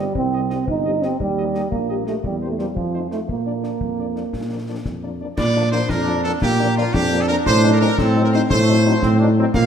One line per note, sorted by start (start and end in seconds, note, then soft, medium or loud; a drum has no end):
0.00 0.15 G3 medium
0.15 0.59 C2 medium
0.15 0.64 C4 medium
0.15 concert bass drum medium
0.33 0.40 G3 soft
0.33 0.40 C4 soft
0.33 0.40 G4 soft
0.33 0.39 D#5 soft
0.50 0.57 G3 soft
0.50 0.57 C4 soft
0.50 0.57 G4 soft
0.50 0.56 D#5 soft
0.50 snare soft
0.68 1.11 G1 medium
0.68 1.04 D#4 medium
0.68 concert bass drum medium
0.85 0.92 G3 soft
0.85 0.92 C4 soft
0.85 0.92 G4 soft
0.85 0.91 D#5 soft
1.02 1.09 G3 soft
1.02 1.19 C4 medium
1.02 1.09 C4 soft
1.02 1.10 G4 soft
1.02 1.08 D#5 soft
1.02 snare soft
1.20 1.64 D#2 medium
1.20 1.69 G3 medium
1.20 concert bass drum medium
1.37 1.45 G3 soft
1.37 1.45 A#3 soft
1.37 1.45 G4 soft
1.37 1.43 D#5 soft
1.54 1.62 G3 soft
1.54 1.61 A#3 soft
1.54 1.61 G4 soft
1.54 1.61 D#5 soft
1.54 snare soft
1.71 2.16 A#1 medium
1.71 2.04 A#3 medium
1.71 concert bass drum medium
1.89 1.96 G3 soft
1.89 1.96 A#3 soft
1.89 1.97 G4 soft
1.89 1.96 D#5 soft
2.07 2.14 G3 soft
2.07 2.15 A3 medium
2.07 2.14 A#3 soft
2.07 2.14 G4 soft
2.07 2.13 D#5 soft
2.07 snare soft
2.24 2.68 E2 medium
2.24 2.36 G3 medium
2.24 concert bass drum medium
2.42 2.48 A#3 soft
2.42 2.48 C4 soft
2.42 2.48 G4 soft
2.42 2.48 C5 soft
2.50 2.54 A3 soft
2.58 2.66 G3 medium
2.58 2.65 A#3 soft
2.58 2.66 C4 soft
2.58 2.66 G4 soft
2.58 2.65 C5 soft
2.58 snare soft
2.76 3.20 F2 soft
2.76 3.08 F3 soft
2.76 concert bass drum medium
2.94 3.00 A3 soft
2.94 3.00 C4 soft
2.94 3.00 D#4 soft
2.94 3.00 C5 soft
3.11 3.19 A3 medium
3.11 3.18 A3 soft
3.11 3.18 C4 soft
3.11 3.18 D#4 soft
3.11 3.18 C5 soft
3.11 snare soft
3.28 3.72 A#2 soft
3.28 5.16 A#3 medium
3.28 concert bass drum medium
3.46 3.52 F3 soft
3.46 3.52 A#3 soft
3.46 3.52 D4 soft
3.46 3.52 D5 soft
3.63 3.70 F3 soft
3.63 3.70 A#3 soft
3.63 3.69 D4 soft
3.63 3.70 D5 soft
3.63 snare soft
3.81 4.24 F2 soft
3.81 concert bass drum medium
3.98 4.05 F3 soft
3.98 4.05 A#3 soft
3.98 4.05 D4 soft
3.98 4.05 D5 soft
4.16 4.22 F3 soft
4.16 4.22 A#3 soft
4.16 4.22 D4 soft
4.16 4.22 D5 soft
4.16 snare soft
4.33 4.77 A#2 soft
4.33 concert bass drum medium
4.33 snare soft
4.50 4.57 F3 soft
4.50 4.57 A#3 soft
4.50 4.57 D4 soft
4.50 4.57 D5 soft
4.68 4.74 F3 soft
4.68 4.75 A#3 soft
4.68 4.74 D4 soft
4.68 4.75 D5 soft
4.85 5.24 F2 medium
4.85 concert bass drum medium
4.85 snare soft
5.03 5.09 F3 soft
5.03 5.09 A#3 soft
5.03 5.09 D4 soft
5.03 5.09 D5 soft
5.20 5.27 F3 soft
5.20 5.27 A#3 soft
5.20 5.27 D4 soft
5.20 5.26 D5 soft
5.37 5.81 A#2 medium
5.37 5.70 D5 loud
5.37 concert bass drum medium
5.37 snare medium
5.37 crash medium
5.55 5.62 F3 medium
5.55 5.61 A#3 medium
5.55 5.61 D4 medium
5.72 5.79 F3 medium
5.72 5.79 A#3 medium
5.72 5.79 D4 medium
5.72 5.88 C5 loud
5.72 snare medium
5.89 6.33 F2 medium
5.89 6.39 D4 loud
5.89 6.25 A#4 loud
5.89 concert bass drum medium
5.89 snare medium
6.07 6.13 F3 medium
6.07 6.13 A#3 medium
6.07 6.13 D4 medium
6.24 6.31 F3 medium
6.24 6.31 A#3 medium
6.24 6.31 D4 medium
6.24 6.32 A4 loud
6.24 snare medium
6.42 6.86 A#2 medium
6.42 6.91 A#3 medium
6.42 6.74 G4 loud
6.42 concert bass drum medium
6.42 snare medium
6.60 6.66 F3 medium
6.60 6.66 A#3 medium
6.60 6.66 D4 medium
6.77 6.83 F3 medium
6.77 6.83 A#3 medium
6.77 6.83 D4 medium
6.77 6.93 F4 loud
6.94 7.38 F2 medium
6.94 7.99 D4 loud
6.94 7.20 G4 loud
6.94 concert bass drum medium
6.94 snare medium
7.11 7.18 F3 medium
7.11 7.18 A#3 medium
7.11 7.18 D4 medium
7.21 7.29 A4 loud
7.28 7.35 F3 medium
7.28 7.35 A#3 medium
7.28 7.35 D4 medium
7.28 7.36 A#4 loud
7.46 7.90 A2 loud
7.46 7.71 C5 loud
7.46 concert bass drum medium
7.46 snare medium
7.46 crash soft
7.63 7.70 F#3 medium
7.63 7.70 C4 medium
7.63 7.70 D#4 medium
7.73 7.77 A#4 loud
7.81 7.88 F#3 medium
7.81 7.88 C4 medium
7.81 7.88 D#4 medium
7.81 7.97 A#4 loud
7.81 snare medium
7.98 8.42 A2 medium
7.98 8.47 C4 medium
7.98 8.25 A4 loud
7.98 concert bass drum medium
7.98 snare medium
8.16 8.22 F#3 medium
8.16 8.22 C4 medium
8.16 8.22 D#4 medium
8.25 8.29 A#4 medium
8.33 8.40 F#3 medium
8.33 8.40 C4 medium
8.33 8.40 D#4 medium
8.33 8.41 C5 loud
8.33 snare medium
8.50 8.94 A2 loud
8.50 8.99 A3 medium
8.50 9.34 C5 loud
8.50 concert bass drum medium
8.50 snare medium
8.68 8.75 F#3 medium
8.68 8.75 C4 medium
8.68 8.75 D#4 medium
8.86 8.92 F#3 medium
8.86 8.92 C4 medium
8.86 8.92 D#4 medium
9.02 9.46 A2 medium
9.02 9.19 C4 loud
9.02 concert bass drum medium
9.02 snare medium
9.19 9.27 F#3 medium
9.19 9.27 C4 medium
9.19 9.27 D4 medium
9.19 9.27 D#4 medium
9.37 9.44 F#3 medium
9.37 9.45 C4 loud
9.37 9.44 C4 medium
9.37 9.44 D#4 medium
9.54 9.66 A#2 loud
9.54 9.66 A#3 medium
9.54 9.66 F5 loud
9.54 concert bass drum loud
9.54 snare medium
9.54 crash soft